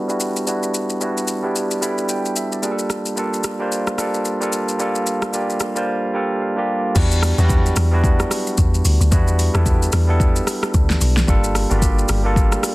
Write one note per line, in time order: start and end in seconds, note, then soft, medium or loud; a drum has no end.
0.00 0.08 G3 medium
0.00 0.08 B3 medium
0.00 0.09 D4 medium
0.00 0.10 E4 medium
0.00 0.11 F#4 medium
0.00 1.45 G4 medium
0.00 1.84 A4 medium
0.08 0.40 G3 medium
0.08 0.40 B3 medium
0.08 0.40 D4 medium
0.08 0.41 E4 medium
0.08 0.41 F#4 medium
0.08 shaker soft
0.20 shaker medium
0.36 shaker soft
0.46 0.92 G3 medium
0.46 0.92 B3 medium
0.46 0.92 D4 medium
0.46 0.93 E4 medium
0.46 0.93 F#4 medium
0.46 shaker medium
0.63 shaker medium
0.74 shaker medium
0.90 shaker medium
1.00 1.34 G3 medium
1.00 1.34 B3 medium
1.00 1.35 D4 medium
1.00 1.35 E4 medium
1.00 1.35 F#4 medium
1.00 shaker medium
1.17 shaker soft
1.28 shaker medium
1.43 1.75 G3 medium
1.43 1.75 B3 medium
1.43 1.76 D4 medium
1.43 1.76 E4 medium
1.43 1.76 G4 medium
1.56 shaker medium
1.71 shaker medium
1.81 2.15 G3 medium
1.81 2.15 B3 medium
1.81 2.16 D4 medium
1.81 2.16 E4 medium
1.81 2.16 A4 medium
1.81 2.08 B5 medium
1.81 shaker medium
1.98 shaker soft
2.09 2.35 G5 medium
2.09 shaker medium
2.25 shaker soft
2.36 2.51 E5 medium
2.36 shaker medium
2.52 2.78 D5 medium
2.52 shaker medium
2.62 3.08 G3 medium
2.62 3.08 A#3 medium
2.62 3.08 D4 medium
2.62 3.09 F4 medium
2.62 2.72 G#4 medium
2.62 shaker medium
2.71 3.12 A4 medium
2.79 shaker medium
2.90 cross-stick medium
2.90 shaker medium
3.06 shaker medium
3.16 3.50 G3 medium
3.16 3.50 A#3 medium
3.16 3.51 D4 medium
3.16 3.51 F4 medium
3.16 3.51 A4 medium
3.16 shaker medium
3.34 shaker soft
3.44 cross-stick medium
3.44 shaker medium
3.59 3.91 G3 medium
3.59 3.91 A#3 medium
3.59 3.92 D4 medium
3.59 3.92 F4 medium
3.59 3.92 C5 medium
3.72 shaker medium
3.87 cross-stick medium
3.87 shaker medium
3.97 4.31 G3 medium
3.97 4.32 A#3 medium
3.97 4.32 D4 medium
3.97 4.32 F4 medium
3.97 4.33 A4 medium
3.97 cross-stick medium
3.97 shaker medium
4.14 shaker soft
4.25 shaker medium
4.40 4.72 G3 medium
4.40 4.73 A#3 medium
4.40 4.73 D4 medium
4.40 4.73 F4 medium
4.40 4.74 A4 medium
4.40 shaker soft
4.53 shaker medium
4.69 shaker soft
4.79 5.24 G3 medium
4.79 5.24 A#3 medium
4.79 5.25 D4 medium
4.79 5.25 F4 medium
4.79 5.25 A4 medium
4.79 shaker medium
4.95 shaker medium
5.07 shaker medium
5.22 cross-stick medium
5.22 shaker soft
5.33 5.66 G3 medium
5.33 5.67 A#3 medium
5.33 5.67 D4 medium
5.33 5.67 F4 medium
5.33 5.68 G4 medium
5.33 shaker medium
5.50 shaker soft
5.60 cross-stick medium
5.60 shaker medium
5.75 6.07 G3 medium
5.75 6.08 A#3 medium
5.75 6.08 D4 medium
5.75 6.08 F4 medium
5.75 6.09 C5 medium
5.75 shaker medium
6.14 6.47 G3 medium
6.14 6.48 A#3 medium
6.14 6.48 D4 medium
6.14 6.48 F4 medium
6.14 6.49 A4 medium
6.14 6.40 G5 medium
6.42 6.92 F5 medium
6.56 6.88 G3 medium
6.56 6.89 A#3 medium
6.56 6.89 D4 medium
6.56 6.89 F4 medium
6.56 6.90 G4 medium
6.95 7.33 E2 loud
6.95 7.29 G3 medium
6.95 7.29 B3 medium
6.95 7.29 D4 medium
6.95 7.29 E4 medium
6.95 7.30 F#4 medium
6.95 kick loud
6.95 crash loud
6.95 shaker medium
7.12 shaker medium
7.23 cross-stick medium
7.23 open hi-hat soft
7.23 shaker medium
7.37 7.72 E2 loud
7.37 7.43 F#3 medium
7.37 7.80 B3 medium
7.37 7.80 D4 medium
7.37 7.80 E4 medium
7.37 7.81 F#4 loud
7.37 shaker medium
7.44 7.83 G3 medium
7.49 kick loud
7.49 shaker medium
7.66 shaker medium
7.76 8.24 E2 loud
7.76 cross-stick loud
7.76 open hi-hat medium
7.76 shaker medium
7.91 8.78 G3 medium
7.91 8.78 B3 medium
7.91 8.78 D4 medium
7.91 8.79 E4 medium
7.91 8.79 F#4 loud
8.04 kick loud
8.04 shaker medium
8.20 cross-stick medium
8.20 shaker medium
8.31 cross-stick medium
8.31 open hi-hat medium
8.31 shaker medium
8.47 shaker soft
8.58 8.82 E2 loud
8.58 kick loud
8.58 shaker medium
8.74 shaker soft
8.85 8.99 D2 medium
8.85 open hi-hat medium
8.85 shaker loud
9.00 9.10 D2 medium
9.00 shaker medium
9.11 9.50 E2 loud
9.11 9.45 G3 medium
9.11 9.45 B3 medium
9.11 9.45 D4 medium
9.11 9.46 E4 medium
9.11 9.46 F#4 medium
9.11 kick loud
9.11 shaker medium
9.28 shaker medium
9.39 open hi-hat medium
9.39 shaker medium
9.54 9.88 E2 loud
9.54 9.96 G3 medium
9.54 9.96 B3 medium
9.54 9.96 D4 medium
9.54 9.97 E4 medium
9.54 9.97 A4 loud
9.54 cross-stick loud
9.54 shaker medium
9.66 kick loud
9.66 shaker medium
9.82 shaker medium
9.92 10.41 E2 loud
9.92 cross-stick loud
9.92 open hi-hat medium
9.92 shaker loud
10.08 10.94 G3 medium
10.08 10.94 B3 medium
10.08 10.94 D4 medium
10.08 10.95 E4 medium
10.08 10.95 A4 loud
10.20 kick loud
10.20 shaker medium
10.36 shaker medium
10.47 cross-stick medium
10.47 open hi-hat medium
10.47 shaker loud
10.63 cross-stick loud
10.63 shaker soft
10.74 10.98 D2 loud
10.74 kick loud
10.74 shaker medium
10.90 snare medium
10.90 shaker soft
11.01 11.25 B1 loud
11.01 open hi-hat medium
11.01 shaker loud
11.17 snare medium
11.17 shaker medium
11.27 11.66 G1 loud
11.27 11.61 G3 medium
11.27 11.61 A#3 medium
11.27 11.62 D4 medium
11.27 11.62 F4 medium
11.27 11.62 A4 loud
11.27 kick loud
11.27 shaker medium
11.44 shaker medium
11.55 cross-stick medium
11.55 open hi-hat soft
11.55 shaker medium
11.70 12.05 G1 loud
11.70 12.12 G3 medium
11.70 12.12 A#3 medium
11.70 12.12 D4 medium
11.70 12.13 F4 medium
11.70 11.77 F#4 medium
11.70 shaker medium
11.79 12.16 G4 medium
11.79 kick loud
11.79 shaker medium
11.99 shaker soft
12.09 12.57 G1 loud
12.09 cross-stick loud
12.09 open hi-hat medium
12.09 shaker loud
12.24 12.75 G3 medium
12.24 12.75 A#3 medium
12.24 12.75 D4 medium
12.24 12.75 F4 medium
12.24 12.75 A4 loud
12.36 kick loud
12.36 shaker medium
12.52 cross-stick medium
12.52 shaker medium
12.63 cross-stick loud
12.63 open hi-hat medium
12.63 shaker loud